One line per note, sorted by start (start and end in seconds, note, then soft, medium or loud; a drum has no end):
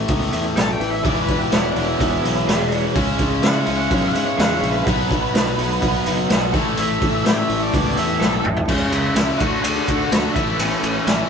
0.00 0.79 A2 medium
0.00 1.05 E3 medium
0.00 0.80 A3 loud
0.00 1.03 A3 medium
0.00 0.32 E4 medium
0.08 0.28 C#2 medium
0.08 1.55 B3 medium
0.08 kick medium
0.08 open hi-hat medium
0.33 0.52 E2 medium
0.33 0.80 E4 medium
0.33 open hi-hat medium
0.56 0.76 B1 medium
0.56 1.04 A4 medium
0.56 0.72 A5 medium
0.56 snare loud
0.56 open hi-hat medium
0.73 0.88 G5 medium
0.80 1.00 A1 medium
0.80 1.51 E4 medium
0.80 open hi-hat medium
0.90 1.05 E5 medium
1.03 1.43 E1 medium
1.03 2.93 E2 medium
1.03 2.94 B2 medium
1.03 1.77 E3 medium
1.03 1.27 E3 medium
1.03 2.94 E3 loud
1.03 1.76 G#3 medium
1.03 1.76 B3 medium
1.03 1.74 E4 medium
1.03 1.22 D5 medium
1.03 kick loud
1.03 open hi-hat medium
1.22 1.37 B4 medium
1.28 1.74 E3 medium
1.28 kick medium
1.28 open hi-hat medium
1.38 1.53 G4 medium
1.52 1.72 E1 medium
1.52 2.21 C#4 medium
1.52 1.68 E4 medium
1.52 snare loud
1.52 open hi-hat medium
1.71 1.85 D4 medium
1.75 1.96 E1 medium
1.75 2.95 E3 medium
1.75 2.46 E3 medium
1.75 2.47 G#3 medium
1.75 2.48 B3 medium
1.75 2.46 E4 medium
1.75 open hi-hat medium
1.86 2.78 E4 loud
1.98 2.19 E1 medium
1.98 2.97 B3 medium
1.98 kick medium
1.98 open hi-hat medium
2.22 2.43 B1 medium
2.22 2.70 C#4 medium
2.22 open hi-hat medium
2.47 2.87 E1 medium
2.47 2.94 E3 medium
2.47 2.94 G#3 medium
2.47 2.96 B3 medium
2.47 2.95 E4 medium
2.47 2.95 G#4 medium
2.47 snare loud
2.47 open hi-hat medium
2.71 2.95 C#4 medium
2.71 open hi-hat medium
2.94 3.15 C#2 medium
2.94 4.14 C#3 medium
2.94 4.85 C#3 medium
2.94 3.65 C#3 medium
2.94 3.66 G#3 medium
2.94 4.85 G#3 medium
2.94 3.65 C#4 medium
2.94 4.86 C#4 loud
2.94 3.64 E4 loud
2.94 kick loud
2.94 open hi-hat medium
3.19 3.39 C#2 medium
3.19 3.66 G#3 medium
3.19 kick medium
3.19 open hi-hat medium
3.43 3.62 C#3 medium
3.43 4.13 E4 medium
3.43 3.59 F#5 loud
3.43 snare loud
3.43 open hi-hat medium
3.60 3.75 C#5 medium
3.65 3.86 C#2 medium
3.65 4.37 C#3 medium
3.65 4.86 G#3 medium
3.65 4.37 G#3 medium
3.65 4.37 C#4 medium
3.65 4.36 E4 medium
3.65 open hi-hat medium
3.76 3.91 F#5 medium
3.91 4.10 F#2 loud
3.91 5.81 B3 medium
3.91 4.07 C#5 medium
3.91 kick medium
3.91 open hi-hat medium
4.07 4.23 F#5 loud
4.14 4.34 G#2 medium
4.14 4.60 E4 medium
4.14 open hi-hat medium
4.25 4.39 C#5 medium
4.37 4.58 E2 loud
4.37 4.85 C#3 medium
4.37 4.85 G#3 medium
4.37 4.85 C#4 medium
4.37 4.86 E4 medium
4.37 4.86 G#4 medium
4.37 4.55 F#5 medium
4.37 snare loud
4.37 open hi-hat medium
4.57 4.70 C#5 loud
4.61 4.81 A#1 medium
4.61 4.86 E4 medium
4.61 open hi-hat medium
4.71 6.10 B4 loud
4.85 5.25 B1 medium
4.85 6.05 B2 medium
4.85 6.51 B2 medium
4.85 5.56 B2 medium
4.85 5.57 D#3 medium
4.85 6.52 F#3 loud
4.85 5.57 F#3 medium
4.85 5.58 B3 medium
4.85 6.53 B3 loud
4.85 5.57 F#4 medium
4.85 kick loud
4.85 open hi-hat medium
5.09 5.56 F#3 medium
5.09 kick medium
5.09 open hi-hat medium
5.33 5.54 B1 medium
5.33 6.04 D#4 medium
5.33 snare loud
5.33 open hi-hat medium
5.57 5.77 B1 medium
5.57 6.28 B2 medium
5.57 6.29 D#3 medium
5.57 6.53 F#3 medium
5.57 6.29 F#3 medium
5.57 6.28 B3 medium
5.57 6.28 F#4 medium
5.57 open hi-hat medium
5.81 6.01 B1 medium
5.81 6.53 B3 medium
5.81 kick medium
5.81 open hi-hat medium
6.05 6.25 F#1 medium
6.05 6.53 D#4 medium
6.05 open hi-hat medium
6.29 6.54 B1 medium
6.29 6.52 B2 medium
6.29 6.53 D#3 medium
6.29 6.53 F#3 medium
6.29 6.52 B3 medium
6.29 6.53 F#4 medium
6.29 snare loud
6.29 open hi-hat medium
6.52 6.73 A1 loud
6.52 8.42 A2 loud
6.52 8.43 E3 loud
6.52 6.77 A3 medium
6.52 7.23 A3 medium
6.52 8.44 A3 loud
6.52 7.24 B3 loud
6.52 7.24 E4 loud
6.52 7.25 A4 loud
6.52 kick loud
6.52 snare soft
6.52 open hi-hat medium
6.77 6.97 A1 medium
6.77 7.00 A3 medium
6.77 7.25 E5 loud
6.77 open hi-hat medium
7.01 7.21 A1 loud
7.01 7.47 A3 medium
7.01 kick medium
7.01 open hi-hat medium
7.25 7.44 A2 medium
7.25 7.95 A3 medium
7.25 7.95 B3 medium
7.25 7.95 E4 medium
7.25 7.96 E4 loud
7.25 7.96 A4 medium
7.25 7.38 G5 medium
7.25 snare loud
7.25 open hi-hat medium
7.38 7.61 E5 medium
7.48 7.68 A1 loud
7.48 8.67 A3 medium
7.48 open hi-hat medium
7.63 7.97 D5 loud
7.73 7.92 C#2 loud
7.73 8.68 B3 medium
7.73 kick medium
7.73 open hi-hat medium
7.97 8.16 E2 loud
7.97 8.44 A3 medium
7.97 8.44 B3 medium
7.97 8.43 E4 medium
7.97 8.43 A4 medium
7.97 8.44 E5 loud
7.97 open hi-hat medium
8.20 8.40 B1 loud
8.20 8.68 A4 medium
8.20 snare medium
8.44 8.64 A1 medium
8.44 8.68 E4 medium
8.44 mid tom medium
8.57 floor tom medium
8.68 8.83 C#2 medium
8.68 9.39 C#3 medium
8.68 9.15 C#3 medium
8.68 9.15 G#3 loud
8.68 9.16 C#4 medium
8.68 8.92 C#4 medium
8.68 8.91 C#5 medium
8.68 kick loud
8.68 crash loud
8.72 9.40 E4 medium
8.92 9.07 C#2 medium
8.92 9.40 G#3 medium
8.92 9.37 E4 medium
8.92 9.37 E5 medium
8.92 ride medium
9.15 9.31 C#2 medium
9.15 9.38 C#3 medium
9.15 9.39 G#3 medium
9.15 9.39 C#4 loud
9.15 9.40 E4 medium
9.15 snare loud
9.15 ride loud
9.38 9.55 D2 medium
9.38 10.35 D3 medium
9.38 9.62 D3 loud
9.38 9.63 A3 medium
9.38 9.63 D4 loud
9.38 9.62 F#4 medium
9.38 9.61 F#5 medium
9.38 kick loud
9.38 ride medium
9.62 9.78 D2 medium
9.62 10.10 D3 medium
9.62 10.11 A3 loud
9.62 10.10 D4 medium
9.62 10.11 D4 loud
9.62 9.87 G#4 medium
9.62 9.87 G#5 medium
9.62 ride medium
9.85 10.03 D2 medium
9.85 10.36 F#4 medium
9.85 10.33 F#4 medium
9.85 10.32 F#5 medium
9.85 kick medium
9.85 ride medium
10.11 10.26 D2 medium
10.11 10.34 D3 medium
10.11 10.34 A3 medium
10.11 10.35 D4 medium
10.11 10.34 D4 medium
10.11 snare loud
10.11 ride loud
10.32 10.50 A1 medium
10.32 10.58 A2 medium
10.32 10.57 A2 medium
10.32 10.58 E3 medium
10.32 10.59 A3 loud
10.32 10.57 E4 medium
10.32 10.56 E5 medium
10.32 kick loud
10.32 ride medium
10.37 11.29 C#4 loud
10.57 10.74 A1 medium
10.57 11.29 A2 medium
10.57 11.05 A2 medium
10.57 11.05 E3 loud
10.57 11.06 A3 loud
10.57 11.27 C#4 medium
10.57 11.26 C#5 medium
10.57 ride loud
10.83 10.98 A1 medium
10.83 11.29 A3 medium
10.83 ride medium
11.06 11.21 A1 medium
11.06 11.28 A2 medium
11.06 11.29 E3 medium
11.06 11.29 A3 medium
11.06 11.29 E4 medium
11.06 snare loud
11.06 ride medium